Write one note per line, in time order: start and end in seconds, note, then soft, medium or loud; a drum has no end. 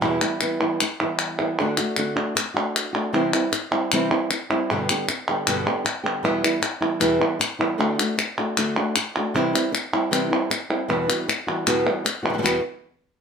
0.01 0.20 E2 medium
0.01 0.20 B2 medium
0.01 0.21 E3 medium
0.01 0.21 G3 loud
0.01 0.21 B3 medium
0.01 0.20 E4 loud
0.21 0.40 E3 soft
0.21 0.40 G3 medium
0.21 0.41 B3 medium
0.21 0.40 E4 medium
0.21 clap medium
0.41 0.60 E3 medium
0.41 0.60 G3 medium
0.41 0.59 B3 medium
0.41 0.59 E4 medium
0.41 clap medium
0.60 0.80 E3 soft
0.60 0.79 G3 medium
0.60 0.79 B3 medium
0.60 0.79 E4 medium
0.80 muted nylon-string guitar stroke medium
0.80 clap medium
1.00 1.39 E3 soft
1.00 1.39 G3 soft
1.00 1.38 B3 medium
1.00 1.38 E4 medium
1.19 clap medium
1.39 1.58 E3 medium
1.39 1.58 G3 medium
1.39 1.58 B3 medium
1.39 1.57 E4 medium
1.60 1.77 D3 medium
1.60 1.78 A3 medium
1.60 1.77 D4 loud
1.60 1.76 F#4 loud
1.77 1.97 A3 medium
1.77 1.97 D4 medium
1.77 1.96 F#4 medium
1.77 clap medium
1.96 2.16 D3 medium
1.96 2.16 A3 medium
1.96 2.15 D4 medium
1.96 2.14 F#4 medium
1.96 clap medium
2.16 2.35 A3 medium
2.16 2.35 D4 medium
2.16 2.35 F#4 medium
2.35 muted nylon-string guitar stroke medium
2.35 clap loud
2.54 2.93 A3 medium
2.54 2.93 D4 medium
2.54 2.92 F#4 medium
2.76 clap loud
2.93 3.13 A3 soft
2.93 3.13 D4 medium
2.93 3.12 F#4 medium
3.13 3.32 C3 medium
3.13 3.32 E3 medium
3.13 3.32 G3 medium
3.13 3.32 C4 medium
3.13 3.32 E4 loud
3.33 3.51 G3 medium
3.33 3.51 C4 medium
3.33 3.52 E4 medium
3.33 clap medium
3.52 muted nylon-string guitar stroke medium
3.52 clap medium
3.71 3.91 G3 medium
3.71 3.91 C4 medium
3.71 3.90 E4 medium
3.92 4.11 C3 loud
3.92 4.11 E3 loud
3.92 4.11 G3 loud
3.92 4.10 C4 medium
3.92 4.10 E4 loud
3.92 clap medium
4.11 4.29 G3 soft
4.11 4.30 C4 medium
4.11 4.29 E4 medium
4.30 muted nylon-string guitar stroke medium
4.30 clap medium
4.50 4.69 G3 medium
4.50 4.69 C4 medium
4.50 4.68 E4 medium
4.50 clap medium
4.70 4.88 G2 medium
4.70 4.88 B2 medium
4.70 4.88 D3 loud
4.70 4.89 G3 medium
4.70 4.89 B3 medium
4.70 4.89 G4 medium
4.89 5.07 D3 medium
4.89 5.08 G3 medium
4.89 5.08 B3 medium
4.89 5.08 G4 medium
4.89 clap medium
5.08 muted nylon-string guitar stroke medium
5.08 clap medium
5.29 5.47 D3 medium
5.29 5.47 G3 medium
5.29 5.47 B3 medium
5.29 5.47 G4 medium
5.47 5.65 G2 medium
5.47 5.66 B2 loud
5.47 5.66 D3 loud
5.47 5.66 G3 medium
5.47 5.66 B3 medium
5.47 5.65 G4 loud
5.47 clap loud
5.66 5.83 D3 soft
5.66 5.84 G3 soft
5.66 5.84 B3 medium
5.66 5.85 G4 medium
5.66 clap medium
5.85 muted nylon-string guitar stroke medium
5.85 clap medium
6.03 6.23 D3 medium
6.03 6.23 G3 medium
6.03 6.23 B3 medium
6.03 6.23 G4 medium
6.23 6.42 E2 medium
6.23 6.42 B2 medium
6.23 6.43 E3 medium
6.23 6.43 G3 medium
6.23 6.43 B3 loud
6.23 6.43 E4 medium
6.44 6.61 E3 soft
6.44 6.61 G3 soft
6.44 6.61 B3 medium
6.44 6.61 E4 medium
6.44 clap medium
6.62 muted nylon-string guitar stroke medium
6.62 clap medium
6.81 6.99 E3 medium
6.81 6.99 G3 medium
6.81 7.00 B3 medium
6.81 7.00 E4 medium
6.81 clap medium
7.00 7.19 E2 medium
7.00 7.20 B2 medium
7.00 7.20 E3 loud
7.00 7.20 G3 loud
7.00 7.19 B3 loud
7.00 7.19 E4 loud
7.00 clap medium
7.20 7.39 E3 soft
7.20 7.39 G3 medium
7.20 7.39 B3 medium
7.20 7.39 E4 medium
7.39 muted nylon-string guitar stroke medium
7.39 clap medium
7.59 7.78 E3 soft
7.59 7.78 G3 medium
7.59 7.78 B3 medium
7.59 7.78 E4 medium
7.78 7.97 D3 medium
7.78 7.97 A3 medium
7.78 7.98 D4 loud
7.78 7.97 F#4 loud
7.98 8.17 A3 soft
7.98 8.17 D4 medium
7.98 8.17 F#4 medium
7.98 clap loud
8.17 muted nylon-string guitar stroke medium
8.17 clap medium
8.38 8.57 A3 medium
8.38 8.57 D4 medium
8.38 8.56 F#4 medium
8.57 8.75 D3 medium
8.57 8.76 A3 loud
8.57 8.76 D4 loud
8.57 8.76 F#4 loud
8.57 clap medium
8.77 8.96 A3 medium
8.77 8.96 D4 medium
8.77 8.95 F#4 medium
8.96 muted nylon-string guitar stroke medium
8.96 clap loud
9.17 9.35 A3 medium
9.17 9.35 D4 medium
9.17 9.34 F#4 medium
9.34 9.53 C3 medium
9.34 9.53 E3 medium
9.34 9.53 G3 medium
9.34 9.53 C4 medium
9.34 9.52 E4 loud
9.53 9.71 G3 medium
9.53 9.71 C4 medium
9.53 9.72 E4 medium
9.53 clap medium
9.72 muted nylon-string guitar stroke medium
9.72 clap medium
9.93 10.11 G3 medium
9.93 10.11 C4 medium
9.93 10.11 E4 medium
10.11 10.30 C3 loud
10.11 10.30 E3 loud
10.11 10.30 G3 loud
10.11 10.31 C4 loud
10.11 10.29 E4 loud
10.11 clap loud
10.30 10.50 G3 soft
10.30 10.50 C4 medium
10.30 10.49 E4 medium
10.50 muted nylon-string guitar stroke medium
10.50 clap medium
10.70 10.88 G3 soft
10.70 10.89 C4 medium
10.70 10.88 E4 medium
10.88 11.07 E2 medium
10.88 11.08 B2 medium
10.88 11.08 E3 medium
10.88 11.08 G3 loud
10.88 11.07 B3 loud
10.88 11.07 F#4 medium
11.08 11.27 E3 medium
11.08 11.27 G3 medium
11.08 11.27 B3 medium
11.08 11.27 F#4 medium
11.08 clap medium
11.28 muted nylon-string guitar stroke medium
11.28 clap medium
11.47 11.65 E3 soft
11.47 11.66 G3 medium
11.47 11.66 B3 medium
11.47 11.66 F#4 medium
11.66 11.85 E2 loud
11.66 11.85 B2 loud
11.66 11.85 E3 loud
11.66 11.86 G3 loud
11.66 11.86 B3 loud
11.66 11.85 F#4 loud
11.66 clap medium
11.86 12.04 E3 soft
11.86 12.04 G3 medium
11.86 12.04 B3 medium
11.86 12.04 F#4 medium
12.05 muted nylon-string guitar stroke medium
12.05 clap medium
12.23 12.28 E3 soft
12.23 12.29 G3 medium
12.23 12.29 B3 medium
12.23 12.29 F#4 medium
12.23 clap medium
12.29 12.32 B2 medium
12.29 12.32 E3 medium
12.29 12.33 G3 medium
12.29 12.34 B3 medium
12.29 12.33 F#4 medium
12.34 12.37 B2 medium
12.34 12.37 E3 medium
12.34 12.38 G3 medium
12.34 12.38 B3 medium
12.34 12.38 F#4 medium
12.38 12.41 B2 medium
12.38 12.42 E3 medium
12.38 12.42 G3 medium
12.38 12.43 B3 medium
12.38 12.43 F#4 medium
12.42 12.59 E2 medium
12.42 12.59 B2 medium
12.42 12.59 E3 medium
12.42 12.59 G3 loud
12.42 12.59 B3 loud
12.42 12.60 F#4 loud
12.42 clap loud